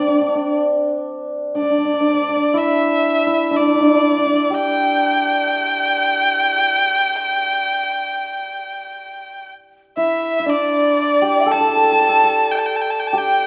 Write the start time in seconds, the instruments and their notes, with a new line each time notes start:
Already playing: hammered dulcimer C4, erhu D5
0.07 hammered dulcimer D4
0.14 hammered dulcimer D4
0.21 hammered dulcimer D4
0.28 hammered dulcimer D4
0.35 hammered dulcimer D4
1.55 hammered dulcimer D4, erhu D5
1.62 hammered dulcimer D4
1.70 hammered dulcimer D4
1.78 hammered dulcimer D4
1.85 hammered dulcimer D4
1.94 hammered dulcimer D4
2.01 hammered dulcimer D4
2.08 hammered dulcimer D4
2.14 hammered dulcimer D4
2.22 hammered dulcimer D4
2.29 hammered dulcimer D4
2.36 hammered dulcimer D4
2.54 hammered dulcimer E4
2.58 erhu E5
3.27 hammered dulcimer E4
3.51 hammered dulcimer D4
3.57 hammered dulcimer D4, erhu D5
3.67 hammered dulcimer D4
3.75 hammered dulcimer D4
3.80 hammered dulcimer D4
3.86 hammered dulcimer D4
3.95 hammered dulcimer D4
4.03 hammered dulcimer D4
4.12 hammered dulcimer D4
4.18 hammered dulcimer D4
4.26 hammered dulcimer D4
4.33 hammered dulcimer D4
4.50 hammered dulcimer G4
4.55 erhu G5
9.96 hammered dulcimer E4, dizi E5, erhu E5
10.40 hammered dulcimer E4
10.46 hammered dulcimer D4, dizi D5, erhu D5
11.22 hammered dulcimer G4
11.46 hammered dulcimer A4, dizi A5
11.51 hammered dulcimer A4, erhu A5
11.60 hammered dulcimer A4
11.69 hammered dulcimer A4
11.76 hammered dulcimer A4
11.83 hammered dulcimer A4
11.92 hammered dulcimer A4
12.01 hammered dulcimer A4
12.09 hammered dulcimer A4
12.24 hammered dulcimer A4
12.51 erhu G5
12.59 erhu A5
12.66 erhu G5
12.76 erhu A5
12.82 erhu G5
12.90 erhu A5
12.99 erhu G5
13.07 erhu A5
13.11 hammered dulcimer G4, dizi G5
13.18 erhu G5